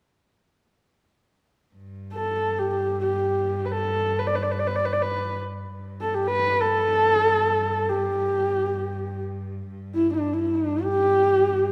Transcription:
1.75 cello G2
2.14 horsehead fiddle A4
2.59 horsehead fiddle G4
3.01 horsehead fiddle G4
3.65 horsehead fiddle B4
3.72 horsehead fiddle A4
4.19 horsehead fiddle B4
4.27 horsehead fiddle D5
4.35 horsehead fiddle B4
4.43 horsehead fiddle D5
4.52 horsehead fiddle B4
4.59 horsehead fiddle D5
4.67 horsehead fiddle B4
4.76 horsehead fiddle D5
4.85 horsehead fiddle B4
4.93 horsehead fiddle D5
5.02 horsehead fiddle B4
5.73 cello G2
6.01 horsehead fiddle A4
6.14 horsehead fiddle G4
6.27 horsehead fiddle B4
6.61 horsehead fiddle A4
7.89 horsehead fiddle G4
9.69 cello G2
9.95 horsehead fiddle E4
10.13 horsehead fiddle D4
10.33 horsehead fiddle E4
10.55 horsehead fiddle D4
10.83 horsehead fiddle G4

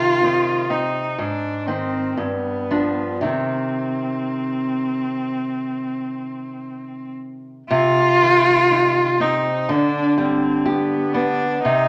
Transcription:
Already playing: nylon-string guitar C3 D#3, cello F4
0.23 nylon-string guitar D#3 C4
0.70 nylon-string guitar C4, cello D#4
1.18 nylon-string guitar G#2, cello D4
1.66 nylon-string guitar D#3 C4, cello C4
2.17 nylon-string guitar G2, cello B3
2.24 cello C4
2.32 cello B3
2.71 nylon-string guitar F3 D4
3.21 nylon-string guitar C3 D#3 C4
3.26 cello C4
7.68 nylon-string guitar C3, cello F4
8.22 nylon-string guitar D#3
8.71 nylon-string guitar D#4
9.20 nylon-string guitar C4, cello D#4
9.69 nylon-string guitar D3, cello D4
10.18 nylon-string guitar G3, cello C4
10.66 cello B3, nylon-string guitar G4
11.14 nylon-string guitar B3, cello D4
11.63 nylon-string guitar C3, cello D#4

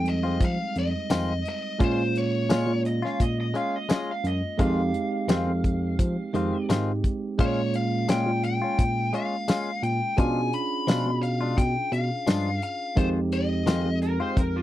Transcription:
Already playing: tine electric piano F2 G3 G#3 C4 D#4
0.05 lead electric guitar D#5, closed hi-hat
0.23 clean electric guitar G#3 C4 F4
0.40 tine electric piano F3, kick, closed hi-hat
0.45 lead electric guitar F5
0.76 tine electric piano F2, lead electric guitar D#5, closed hi-hat
1.10 tine electric piano F2, clean electric guitar D#3 G#3 C4 F4, snare, closed hi-hat, tambourine
1.45 lead electric guitar D#5, closed hi-hat
1.79 tine electric piano A#2 G#3 A#3 C#4 F4, clean electric guitar G#3 C#4 F4, kick, closed hi-hat
1.84 lead electric guitar C5
2.15 lead electric guitar C#5, closed hi-hat
2.49 tine electric piano A#2, clean electric guitar G#3 C#4 F4, snare, closed hi-hat, tambourine
2.67 tine electric piano A#2
2.85 electric slide guitar D#5, closed hi-hat
3.02 clean electric guitar C#4 F4, electric slide guitar F5, snare
3.20 tine electric piano A#2, electric slide guitar D#5, kick, closed hi-hat
3.41 electric slide guitar D#5
3.54 clean electric guitar G#3 C#4 F4, electric slide guitar F5, closed hi-hat
3.76 electric slide guitar D#5
3.89 clean electric guitar G#3 C#4 F4, electric slide guitar D#5, snare, closed hi-hat, tambourine
4.11 electric slide guitar F5
4.24 tine electric piano F#2, electric slide guitar D#5, closed hi-hat
4.58 tine electric piano F2 G#3 C4 D#4 G4, clean electric guitar D#3 G#3 C4 F4, electric slide guitar F5, kick, closed hi-hat
4.94 closed hi-hat
5.28 tine electric piano F2, clean electric guitar D#3 G#3 C4 F4, snare, closed hi-hat, tambourine
5.47 tine electric piano F2
5.64 kick, closed hi-hat
5.99 tine electric piano F3, kick, closed hi-hat
6.33 tine electric piano F2 G#3 C4 D#4 G4, clean electric guitar D#3 G#3 C4 F4, closed hi-hat
6.69 tine electric piano G#2, clean electric guitar D#3 G#3 C4 F4, snare, closed hi-hat, tambourine
7.04 kick, closed hi-hat
7.38 tine electric piano A#2 G#3 A#3 C#4 F4, clean electric guitar G#3 C#4 F4, lead electric guitar C#5, kick, closed hi-hat
7.74 lead electric guitar F5, closed hi-hat
8.09 tine electric piano A#2, clean electric guitar G#3 C#4 F4, lead electric guitar G5, snare, closed hi-hat, tambourine
8.27 tine electric piano A#2
8.44 lead electric guitar G5, closed hi-hat
8.62 clean electric guitar C#4 F4
8.79 tine electric piano A#2, kick, closed hi-hat
9.13 clean electric guitar G#3 C#4 F4, lead electric guitar F5, closed hi-hat
9.48 clean electric guitar G#3 C#4 F4, snare, closed hi-hat, tambourine
9.83 tine electric piano A#2, lead electric guitar G5, closed hi-hat
10.17 tine electric piano B2 C#4 D4 F4 G#4, clean electric guitar F3 G#3 D4 F4, lead electric guitar G#5, kick, closed hi-hat
10.53 lead electric guitar B5, closed hi-hat
10.87 tine electric piano B2, clean electric guitar F3 G#3 D4 F4, snare, closed hi-hat, tambourine
11.06 tine electric piano B2
11.23 lead electric guitar F5, closed hi-hat
11.41 clean electric guitar G#3 D4 F4
11.58 tine electric piano B2, lead electric guitar G5, kick, closed hi-hat
11.92 tine electric piano B2, lead electric guitar F5, closed hi-hat
12.27 tine electric piano G2, clean electric guitar F3 G#3 D4 F4, snare, closed hi-hat, tambourine
12.62 lead electric guitar F5, closed hi-hat
12.96 tine electric piano F2 G#3 C4 D#4 G4, clean electric guitar D#3 G#3 C4 F4, lead electric guitar C5, kick, closed hi-hat
13.32 lead electric guitar D#5, closed hi-hat
13.66 tine electric piano F2, clean electric guitar D#3 G#3 C4 F4, snare, closed hi-hat, tambourine
13.85 tine electric piano F2
14.02 electric slide guitar A#4, closed hi-hat
14.20 clean electric guitar G#3 C4 F4, electric slide guitar C5
14.37 tine electric piano F2, electric slide guitar A#4, kick, closed hi-hat
14.56 electric slide guitar F4

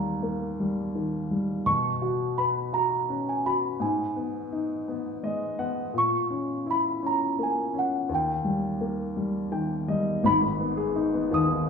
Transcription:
Already playing: grand piano D#2 G3, celesta A#5
0.23 grand piano A#3
0.60 grand piano G3
0.95 grand piano D#3
1.31 grand piano G3
1.66 grand piano B2, celesta C#6
2.02 grand piano F#4
2.38 grand piano B4, celesta B5
2.73 grand piano F#4, celesta A#5
3.10 grand piano C#4
3.29 celesta G#5
3.45 grand piano F#4, celesta B5
3.80 grand piano G#2, celesta G#5
4.16 grand piano B3
4.52 grand piano D#4
4.88 grand piano B3
5.23 grand piano G#3 D#5
5.59 grand piano B3 F#5
5.94 grand piano A#2
5.98 celesta C#6
6.30 grand piano C#4
6.66 grand piano E4
6.71 celesta B5
7.03 grand piano C#4, celesta A#5
7.39 grand piano A#3
7.43 celesta G#5
7.74 grand piano C#4
7.79 celesta F#5
8.09 grand piano D#2
8.14 celesta G5
8.44 grand piano G3
8.81 grand piano A#3
9.17 grand piano G3
9.51 grand piano D#3 G5
9.88 grand piano G3 D#5
10.24 grand piano G#1 G#2, celesta B5
10.42 grand piano D#3
10.60 grand piano B3
10.77 grand piano G#4
10.96 grand piano D#4
11.14 grand piano B3
11.31 grand piano D#2 D#3, celesta D#6
11.49 grand piano D#3

